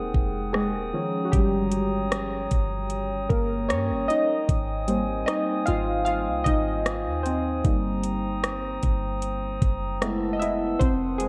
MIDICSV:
0, 0, Header, 1, 5, 480
1, 0, Start_track
1, 0, Key_signature, -4, "major"
1, 0, Tempo, 789474
1, 809, Time_signature, 4, 2, 24, 8
1, 6862, End_track
2, 0, Start_track
2, 0, Title_t, "Glass harmonica"
2, 0, Program_c, 0, 92
2, 0, Note_on_c, 0, 70, 69
2, 0, Note_on_c, 0, 78, 62
2, 0, Note_on_c, 0, 79, 61
2, 0, Note_on_c, 0, 87, 70
2, 547, Note_off_c, 0, 78, 0
2, 554, Note_off_c, 0, 70, 0
2, 566, Note_on_c, 0, 73, 65
2, 566, Note_on_c, 0, 82, 61
2, 2706, Note_off_c, 0, 73, 0
2, 2706, Note_off_c, 0, 82, 0
2, 2732, Note_on_c, 0, 72, 64
2, 2732, Note_on_c, 0, 80, 63
2, 4631, Note_off_c, 0, 80, 0
2, 4647, Note_on_c, 0, 82, 58
2, 6065, Note_off_c, 0, 79, 0
2, 6066, Note_off_c, 0, 72, 0
2, 6066, Note_off_c, 0, 87, 0
2, 6073, Note_off_c, 0, 82, 0
2, 6085, Note_on_c, 0, 71, 66
2, 6086, Note_on_c, 0, 88, 72
2, 6087, Note_on_c, 0, 81, 64
2, 6088, Note_on_c, 0, 78, 65
2, 6562, Note_off_c, 0, 71, 0
2, 6563, Note_off_c, 0, 81, 0
2, 6563, Note_off_c, 0, 88, 0
2, 6567, Note_on_c, 0, 70, 66
2, 6567, Note_on_c, 0, 79, 62
2, 6569, Note_on_c, 0, 87, 72
2, 6862, Note_off_c, 0, 70, 0
2, 6862, Note_off_c, 0, 78, 0
2, 6862, Note_off_c, 0, 79, 0
2, 6862, Note_off_c, 0, 87, 0
2, 6862, End_track
3, 0, Start_track
3, 0, Title_t, "Synth keys"
3, 0, Program_c, 1, 88
3, 0, Control_c, 1, 64, 127
3, 0, Note_on_c, 1, 56, 75
3, 0, Note_on_c, 1, 58, 51
3, 0, Note_on_c, 1, 60, 83
3, 0, Note_on_c, 1, 63, 61
3, 0, Note_on_c, 1, 67, 58
3, 0, Note_on_c, 1, 68, 94
3, 0, Note_on_c, 1, 70, 89
3, 0, Note_on_c, 1, 72, 102
3, 308, Note_off_c, 1, 56, 0
3, 316, Note_off_c, 1, 68, 0
3, 323, Note_on_c, 1, 68, 81
3, 336, Note_on_c, 1, 56, 65
3, 544, Note_off_c, 1, 67, 0
3, 545, Note_off_c, 1, 58, 0
3, 546, Note_off_c, 1, 63, 0
3, 567, Note_on_c, 1, 53, 54
3, 572, Note_on_c, 1, 51, 49
3, 575, Note_on_c, 1, 61, 60
3, 577, Control_c, 1, 64, 0
3, 578, Note_off_c, 1, 70, 0
3, 581, Note_off_c, 1, 72, 0
3, 582, Note_off_c, 1, 60, 0
3, 680, Control_c, 1, 64, 127
3, 746, Note_off_c, 1, 56, 0
3, 760, Note_on_c, 1, 66, 67
3, 777, Note_off_c, 1, 68, 0
3, 801, Note_on_c, 1, 67, 92
3, 806, Note_off_c, 1, 66, 0
3, 814, Note_on_c, 1, 55, 69
3, 1981, Note_off_c, 1, 67, 0
3, 1988, Note_off_c, 1, 55, 0
3, 2003, Note_on_c, 1, 70, 84
3, 2017, Note_on_c, 1, 58, 67
3, 2088, Note_off_c, 1, 70, 0
3, 2102, Note_off_c, 1, 58, 0
3, 2242, Note_on_c, 1, 73, 85
3, 2247, Note_off_c, 1, 61, 0
3, 2255, Note_on_c, 1, 61, 68
3, 2464, Note_off_c, 1, 53, 0
3, 2466, Note_off_c, 1, 51, 0
3, 2475, Note_off_c, 1, 61, 0
3, 2482, Note_on_c, 1, 75, 83
3, 2493, Note_off_c, 1, 73, 0
3, 2495, Note_on_c, 1, 63, 62
3, 2736, Control_c, 1, 64, 0
3, 2841, Control_c, 1, 64, 127
3, 2942, Note_off_c, 1, 75, 0
3, 2948, Note_off_c, 1, 63, 0
3, 2965, Note_on_c, 1, 55, 54
3, 2971, Note_on_c, 1, 58, 50
3, 2975, Note_on_c, 1, 60, 56
3, 3199, Note_on_c, 1, 75, 95
3, 3213, Note_on_c, 1, 63, 73
3, 3285, Note_off_c, 1, 75, 0
3, 3286, Note_off_c, 1, 55, 0
3, 3289, Note_off_c, 1, 58, 0
3, 3292, Note_off_c, 1, 60, 0
3, 3299, Note_off_c, 1, 63, 0
3, 3439, Note_on_c, 1, 77, 102
3, 3455, Note_on_c, 1, 65, 82
3, 3671, Note_off_c, 1, 77, 0
3, 3675, Note_off_c, 1, 65, 0
3, 3678, Note_on_c, 1, 77, 100
3, 3694, Note_on_c, 1, 65, 78
3, 3763, Note_off_c, 1, 77, 0
3, 3779, Note_off_c, 1, 65, 0
3, 3917, Note_on_c, 1, 75, 100
3, 3935, Note_on_c, 1, 63, 79
3, 4388, Note_off_c, 1, 63, 0
3, 4397, Note_on_c, 1, 72, 75
3, 4415, Note_on_c, 1, 60, 62
3, 4418, Note_off_c, 1, 75, 0
3, 4647, Note_on_c, 1, 55, 55
3, 4650, Note_on_c, 1, 58, 49
3, 4653, Note_on_c, 1, 63, 62
3, 4657, Control_c, 1, 64, 0
3, 4757, Control_c, 1, 64, 127
3, 4967, Note_off_c, 1, 55, 0
3, 4969, Note_off_c, 1, 58, 0
3, 4970, Note_off_c, 1, 63, 0
3, 5099, Note_off_c, 1, 72, 0
3, 5108, Note_off_c, 1, 60, 0
3, 6090, Note_on_c, 1, 56, 54
3, 6091, Note_on_c, 1, 57, 50
3, 6094, Note_on_c, 1, 59, 48
3, 6097, Control_c, 1, 64, 0
3, 6097, Note_on_c, 1, 64, 57
3, 6212, Control_c, 1, 64, 127
3, 6282, Note_on_c, 1, 75, 76
3, 6321, Note_on_c, 1, 76, 93
3, 6327, Note_off_c, 1, 75, 0
3, 6329, Note_off_c, 1, 64, 0
3, 6336, Note_on_c, 1, 64, 76
3, 6545, Note_off_c, 1, 56, 0
3, 6546, Note_off_c, 1, 57, 0
3, 6548, Note_off_c, 1, 59, 0
3, 6548, Note_off_c, 1, 76, 0
3, 6556, Note_off_c, 1, 64, 0
3, 6563, Note_on_c, 1, 72, 99
3, 6577, Control_c, 1, 64, 0
3, 6578, Note_on_c, 1, 60, 80
3, 6683, Control_c, 1, 64, 127
3, 6789, Note_off_c, 1, 72, 0
3, 6797, Note_off_c, 1, 60, 0
3, 6798, Note_on_c, 1, 68, 87
3, 6815, Note_on_c, 1, 56, 70
3, 6862, Note_off_c, 1, 56, 0
3, 6862, Note_off_c, 1, 68, 0
3, 6862, End_track
4, 0, Start_track
4, 0, Title_t, "808-style bass"
4, 0, Program_c, 2, 38
4, 0, Note_on_c, 2, 27, 96
4, 84, Note_off_c, 2, 27, 0
4, 90, Note_on_c, 2, 29, 100
4, 450, Note_on_c, 2, 27, 98
4, 459, Note_off_c, 2, 29, 0
4, 564, Note_off_c, 2, 27, 0
4, 811, Note_on_c, 2, 31, 110
4, 1506, Note_off_c, 2, 31, 0
4, 1532, Note_on_c, 2, 31, 97
4, 1991, Note_off_c, 2, 31, 0
4, 2007, Note_on_c, 2, 31, 100
4, 2252, Note_on_c, 2, 43, 94
4, 2261, Note_off_c, 2, 31, 0
4, 2374, Note_on_c, 2, 31, 97
4, 2383, Note_off_c, 2, 43, 0
4, 2486, Note_off_c, 2, 31, 0
4, 2730, Note_on_c, 2, 32, 110
4, 3191, Note_off_c, 2, 32, 0
4, 3454, Note_on_c, 2, 32, 103
4, 3816, Note_on_c, 2, 36, 89
4, 3826, Note_off_c, 2, 32, 0
4, 3927, Note_off_c, 2, 36, 0
4, 3930, Note_on_c, 2, 32, 103
4, 4293, Note_on_c, 2, 39, 95
4, 4303, Note_off_c, 2, 32, 0
4, 4633, Note_off_c, 2, 39, 0
4, 4650, Note_on_c, 2, 31, 110
4, 5345, Note_off_c, 2, 31, 0
4, 5373, Note_on_c, 2, 31, 107
4, 5832, Note_off_c, 2, 31, 0
4, 5848, Note_on_c, 2, 30, 105
4, 6545, Note_off_c, 2, 30, 0
4, 6573, Note_on_c, 2, 29, 110
4, 6862, Note_off_c, 2, 29, 0
4, 6862, End_track
5, 0, Start_track
5, 0, Title_t, "Drums"
5, 87, Note_on_c, 9, 36, 80
5, 148, Note_off_c, 9, 36, 0
5, 329, Note_on_c, 9, 37, 95
5, 390, Note_off_c, 9, 37, 0
5, 809, Note_on_c, 9, 36, 106
5, 809, Note_on_c, 9, 42, 66
5, 870, Note_off_c, 9, 36, 0
5, 870, Note_off_c, 9, 42, 0
5, 1043, Note_on_c, 9, 42, 76
5, 1104, Note_off_c, 9, 42, 0
5, 1287, Note_on_c, 9, 37, 106
5, 1288, Note_on_c, 9, 42, 66
5, 1348, Note_off_c, 9, 37, 0
5, 1349, Note_off_c, 9, 42, 0
5, 1526, Note_on_c, 9, 42, 67
5, 1529, Note_on_c, 9, 36, 82
5, 1587, Note_off_c, 9, 42, 0
5, 1590, Note_off_c, 9, 36, 0
5, 1762, Note_on_c, 9, 42, 62
5, 1823, Note_off_c, 9, 42, 0
5, 2007, Note_on_c, 9, 36, 84
5, 2008, Note_on_c, 9, 42, 64
5, 2068, Note_off_c, 9, 36, 0
5, 2069, Note_off_c, 9, 42, 0
5, 2250, Note_on_c, 9, 37, 93
5, 2251, Note_on_c, 9, 42, 62
5, 2311, Note_off_c, 9, 37, 0
5, 2312, Note_off_c, 9, 42, 0
5, 2494, Note_on_c, 9, 42, 68
5, 2555, Note_off_c, 9, 42, 0
5, 2729, Note_on_c, 9, 36, 103
5, 2730, Note_on_c, 9, 42, 68
5, 2790, Note_off_c, 9, 36, 0
5, 2791, Note_off_c, 9, 42, 0
5, 2966, Note_on_c, 9, 42, 81
5, 3027, Note_off_c, 9, 42, 0
5, 3210, Note_on_c, 9, 37, 109
5, 3210, Note_on_c, 9, 42, 67
5, 3271, Note_off_c, 9, 37, 0
5, 3271, Note_off_c, 9, 42, 0
5, 3445, Note_on_c, 9, 42, 66
5, 3506, Note_off_c, 9, 42, 0
5, 3686, Note_on_c, 9, 42, 68
5, 3747, Note_off_c, 9, 42, 0
5, 3928, Note_on_c, 9, 36, 85
5, 3929, Note_on_c, 9, 42, 64
5, 3989, Note_off_c, 9, 36, 0
5, 3990, Note_off_c, 9, 42, 0
5, 4171, Note_on_c, 9, 37, 103
5, 4172, Note_on_c, 9, 42, 62
5, 4231, Note_off_c, 9, 37, 0
5, 4232, Note_off_c, 9, 42, 0
5, 4412, Note_on_c, 9, 42, 68
5, 4473, Note_off_c, 9, 42, 0
5, 4649, Note_on_c, 9, 42, 64
5, 4650, Note_on_c, 9, 36, 105
5, 4710, Note_off_c, 9, 36, 0
5, 4710, Note_off_c, 9, 42, 0
5, 4885, Note_on_c, 9, 42, 77
5, 4946, Note_off_c, 9, 42, 0
5, 5129, Note_on_c, 9, 37, 107
5, 5130, Note_on_c, 9, 42, 62
5, 5190, Note_off_c, 9, 37, 0
5, 5190, Note_off_c, 9, 42, 0
5, 5367, Note_on_c, 9, 42, 67
5, 5370, Note_on_c, 9, 36, 80
5, 5427, Note_off_c, 9, 42, 0
5, 5431, Note_off_c, 9, 36, 0
5, 5606, Note_on_c, 9, 42, 65
5, 5667, Note_off_c, 9, 42, 0
5, 5848, Note_on_c, 9, 36, 84
5, 5849, Note_on_c, 9, 42, 63
5, 5909, Note_off_c, 9, 36, 0
5, 5910, Note_off_c, 9, 42, 0
5, 6092, Note_on_c, 9, 37, 100
5, 6093, Note_on_c, 9, 42, 64
5, 6153, Note_off_c, 9, 37, 0
5, 6154, Note_off_c, 9, 42, 0
5, 6335, Note_on_c, 9, 42, 72
5, 6396, Note_off_c, 9, 42, 0
5, 6571, Note_on_c, 9, 36, 104
5, 6573, Note_on_c, 9, 42, 64
5, 6632, Note_off_c, 9, 36, 0
5, 6634, Note_off_c, 9, 42, 0
5, 6809, Note_on_c, 9, 42, 77
5, 6862, Note_off_c, 9, 42, 0
5, 6862, End_track
0, 0, End_of_file